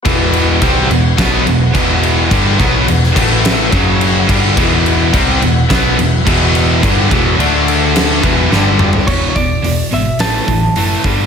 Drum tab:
CC |x-x-x-x-x-x-x-x-|x-x-x-x-x-x-x-x-|x-x-x-x-x-x-x-x-|x-x-x-x-x-x-----|
HH |----------------|----------------|----------------|----------------|
SD |--------o-------|-----o--o-------|--------o-------|--------o---o---|
T2 |----------------|----------------|----------------|--------------o-|
FT |----------------|----------------|----------------|---------------o|
BD |o---o---o---o---|o-o---o---o---o-|o---o---o---o---|o-o-------o-----|

CC |x---------------|
HH |--o-o-o-o-o-o-o-|
SD |--------o-------|
T2 |----------------|
FT |----------------|
BD |o-o-------o---o-|